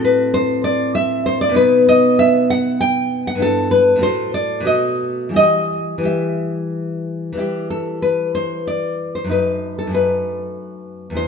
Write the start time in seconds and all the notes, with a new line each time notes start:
Already playing: A2 C4 F#4
0.04 B4
0.34 C5
0.64 D5
0.95 E5
1.26 C5
1.41 D5
1.49 B2 B3
1.54 D#4 B4
1.88 D#5
2.19 E5
2.50 F#5
2.81 G5
3.27 F#5
3.35 G2 B3
3.40 E4 A4
3.71 B4
3.96 A2 A3
4.01 F#4 C5
4.34 D5
4.60 B2 A3
4.65 F#4 D#5
5.29 E3 G3
5.34 G4 D#5
5.98 E3 G3
6.04 G4 E5
7.33 E3 G3
7.37 E4 G4
7.70 A4
8.02 B4
8.35 C5
8.67 D5
9.15 C5
9.24 F#2 A3
9.29 D#4 B4
9.78 A4
9.87 F#2 A3
9.92 D#4 B4
11.10 E2 B3
11.15 E4 C5